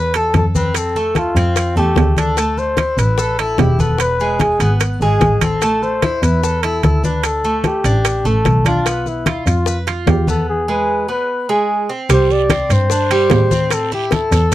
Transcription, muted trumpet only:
0.00 0.18 B4 loud
0.17 0.36 A4 loud
0.37 0.46 A4 medium
0.56 0.79 B4 medium
0.77 1.20 A4 medium
1.18 1.77 F4 loud
1.78 2.20 G4 loud
2.19 2.60 A4 medium
2.58 3.00 C5 loud
2.99 3.41 B4 medium
3.40 3.61 A4 medium
3.59 3.82 G4 medium
3.80 4.00 A4 medium
4.00 4.43 B4 loud
4.41 4.74 G#4 medium
5.03 5.45 G#4 medium
5.43 5.84 A4 medium
5.83 6.24 C5 medium
6.23 6.64 B4 medium
6.63 6.83 A4 medium
6.84 7.02 A4 medium
7.05 7.27 B4 medium
7.25 7.65 A4 loud
7.67 8.28 G4 medium
8.27 8.67 A4 medium
8.68 9.09 F4 medium
9.08 9.47 E4 medium
9.47 9.78 F4 medium
10.09 10.27 G4 medium
10.29 10.47 A4 medium
10.49 10.71 G#4 medium
10.70 11.09 B4 medium
11.10 11.52 B4 medium
11.50 11.90 G#4 medium
12.13 12.33 C5 medium
12.32 12.74 D5 medium
12.73 13.75 C5 loud
13.73 13.93 A4 loud
13.93 14.15 G4 medium
14.13 14.54 A4 loud

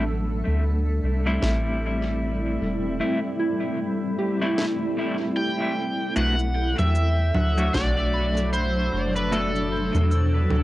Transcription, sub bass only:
0.00 0.43 A1 loud
0.47 1.00 D2 medium
1.03 1.38 C2 medium
1.42 2.58 A1 medium
2.61 3.00 E1 medium
6.16 6.74 B1 loud
6.79 7.32 E2 medium
7.35 7.70 D2 medium
7.74 8.89 B1 medium
8.93 9.90 F#1 medium
9.94 10.47 E2 medium
10.50 10.63 D2 medium

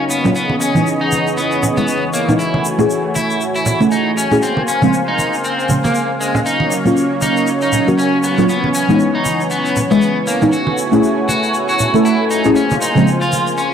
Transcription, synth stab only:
0.00 0.21 F#3 medium
0.00 0.21 A#3 medium
0.00 0.22 C#4 medium
0.00 0.22 F#4 loud
0.24 0.34 F#3 medium
0.24 0.34 A#3 medium
0.24 0.35 C#4 medium
0.24 0.35 F4 loud
0.75 1.73 E3 medium
0.75 1.74 G#3 medium
0.75 1.74 B3 medium
0.75 1.75 D#4 loud
1.77 2.25 E3 medium
1.77 2.25 G#3 medium
1.77 2.25 B3 medium
1.77 2.25 E4 loud
2.28 2.38 E3 medium
2.28 2.38 G#3 medium
2.28 2.38 B3 medium
2.28 2.38 D#4 loud
2.78 3.77 A3 medium
2.78 3.77 C#4 medium
2.78 3.78 E4 medium
2.78 3.78 G#4 loud
3.80 4.28 A3 medium
3.80 4.28 C#4 medium
3.80 4.28 E4 medium
3.80 4.28 A4 loud
4.31 4.41 A3 medium
4.31 4.41 C#4 medium
4.31 4.41 E4 medium
4.31 4.42 G#4 loud
4.82 5.67 C#3 medium
4.82 5.67 F3 medium
4.82 5.68 G#3 medium
4.82 5.68 C4 loud
5.69 6.44 C#3 medium
5.69 6.44 F3 medium
5.69 6.45 G#3 medium
5.69 6.45 C#4 medium
6.85 7.84 F#3 medium
6.85 7.84 A#3 medium
6.85 7.84 C#4 medium
6.85 7.85 F4 loud
7.87 8.35 F#3 medium
7.87 8.35 A#3 medium
7.87 8.35 C#4 medium
7.87 8.35 F#4 loud
8.38 8.48 F#3 medium
8.38 8.48 A#3 medium
8.38 8.48 C#4 medium
8.38 8.48 F4 loud
8.88 9.87 E3 medium
8.88 9.87 G#3 medium
8.88 9.88 B3 medium
8.88 9.88 D#4 loud
9.90 10.38 E3 medium
9.90 10.38 G#3 medium
9.90 10.38 B3 medium
9.90 10.39 E4 loud
10.41 10.51 E3 medium
10.41 10.51 G#3 medium
10.41 10.52 B3 medium
10.41 10.52 D#4 loud
10.92 11.90 A3 medium
10.92 11.91 C#4 medium
10.92 11.91 E4 medium
10.92 11.91 G#4 loud
11.94 12.42 A3 medium
11.94 12.42 C#4 medium
11.94 12.42 E4 medium
11.94 12.42 A4 loud
12.45 12.55 A3 medium
12.45 12.55 C#4 medium
12.45 12.55 E4 medium
12.45 12.55 G#4 loud
12.95 13.74 C#3 medium
12.95 13.74 F3 medium
12.95 13.74 G#3 medium
12.95 13.74 C4 loud

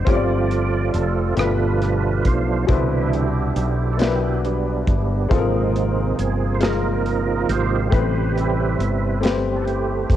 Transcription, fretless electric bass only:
0.07 0.90 G1 medium
0.94 1.34 F1 medium
1.37 2.21 G1 medium
2.26 2.66 B1 medium
2.69 3.52 C2 medium
3.56 4.83 B1 medium
4.88 5.27 G1 medium
5.31 6.14 G#1 medium
6.19 7.45 G1 medium
7.49 7.89 G#1 medium
7.92 8.75 A1 medium
8.79 10.05 G1 medium
10.10 10.17 F#1 medium

